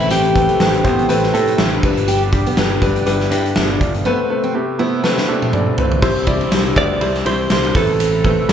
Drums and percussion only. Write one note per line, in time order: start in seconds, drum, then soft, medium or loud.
0.00 closed hi-hat soft
0.11 closed hi-hat medium
0.25 closed hi-hat soft
0.35 kick medium
0.35 closed hi-hat medium
0.49 closed hi-hat soft
0.60 snare loud
0.74 closed hi-hat soft
0.85 kick medium
0.85 closed hi-hat medium
0.99 closed hi-hat soft
1.10 closed hi-hat medium
1.23 snare soft
1.34 closed hi-hat medium
1.48 closed hi-hat soft
1.58 snare loud
1.83 kick medium
1.83 crash medium
1.97 closed hi-hat medium
2.08 closed hi-hat medium
2.22 closed hi-hat soft
2.32 kick medium
2.32 closed hi-hat medium
2.46 closed hi-hat soft
2.57 snare loud
2.82 kick medium
2.82 closed hi-hat medium
2.96 closed hi-hat medium
3.06 closed hi-hat medium
3.20 snare soft
3.20 closed hi-hat soft
3.31 closed hi-hat medium
3.46 closed hi-hat soft
3.56 snare loud
3.70 closed hi-hat soft
3.81 kick medium
3.81 closed hi-hat medium
3.94 closed hi-hat soft
5.04 snare medium
5.18 snare medium
5.42 high tom medium
5.53 mid tom medium
5.78 floor tom medium
5.92 floor tom medium
6.02 kick loud
6.02 crash medium
6.27 kick medium
6.27 ride medium
6.41 ride soft
6.52 snare loud
6.52 ride medium
6.76 kick loud
6.76 ride medium
7.01 ride medium
7.15 snare soft
7.26 ride medium
7.50 snare loud
7.50 ride medium
7.65 ride soft
7.75 kick loud
7.75 open hi-hat medium
7.75 ride medium
8.00 hi-hat pedal medium
8.00 ride medium
8.24 kick medium
8.24 ride medium
8.49 snare loud
8.49 ride medium